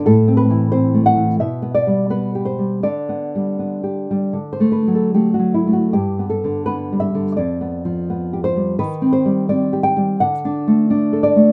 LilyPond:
\new Staff \with { instrumentName = "Nylon-string guitar" } { \time 4/4 \key g \major \tempo 4 = 85 << { a'8 b'8 c''8 fis''8 e''8 d''8 b'8 c''8 | d''2~ d''16 c''16 b'16 a'16 g'16 fis'16 e'16 fis'16 | g'8 a'8 b'8 e''8 d''4. c''8 | b'8 c''8 d''8 g''8 fis''4. d''8 | } \\ { \tuplet 3/2 { a,8 c'8 e8 c'8 a8 e8 b,8 b8 g8 b8 g'8 g8 } | \tuplet 3/2 { d8 b8 g8 b8 g'8 g8 d8 a8 fis8 a8 fis8 a8 } | \tuplet 3/2 { g,8 b8 d8 b8 g8 d8 f,8 b8 f8 b8 g'8 g8 } | \tuplet 3/2 { ees8 c'8 g8 c'8 g'8 g8 d8 d'8 a8 d'8 a'8 a8 } | } >> }